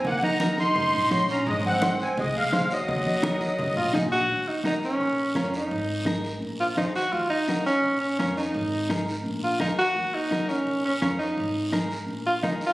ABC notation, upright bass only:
X:1
M:4/4
L:1/16
Q:1/4=170
K:Ebdor
V:1 name="Upright bass" clef=bass
E,,8 G,,2 B,,, z B,,,4 | A,,,8 C,,2 E,, z E,,4 | E,,8 G,,2 B,,, z B,,,4 | E,,8 B,,,4 F,,4 |
A,,,8 B,,,4 E,,4 | E,,8 B,,,4 F,,4 | A,,,8 B,,,4 E,,4 | E,,8 B,,,4 F,,4 |
A,,,8 B,,,4 E,,4 |]